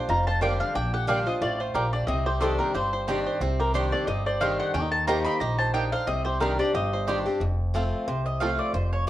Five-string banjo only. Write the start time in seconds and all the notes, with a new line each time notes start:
Already playing: D4 G4 C5
0.09 F4
0.27 C5
0.42 G4
0.61 D4
0.75 D4
0.94 G4
1.09 D4
1.27 C5
1.42 F4
1.60 C5
1.75 G4
1.93 D4
2.08 C4
2.26 G4
2.41 C5
2.60 C4
2.75 G4
2.93 C5
3.08 C4
3.26 C5
3.41 C4
3.60 G4
3.75 C5
3.93 C4
4.08 G4
4.26 C5
4.41 C4
4.60 C5
4.74 C#4
4.82 D#4
5.08 C5
5.26 D#4
5.41 G4
5.59 C5
5.74 D#4
5.93 C5
6.08 C4
6.26 G4
6.41 C4
6.60 C5
6.75 G4
6.93 C5
7.08 G4
7.26 C4
7.75 C4 F4 A4
8.42 C4 F4 A4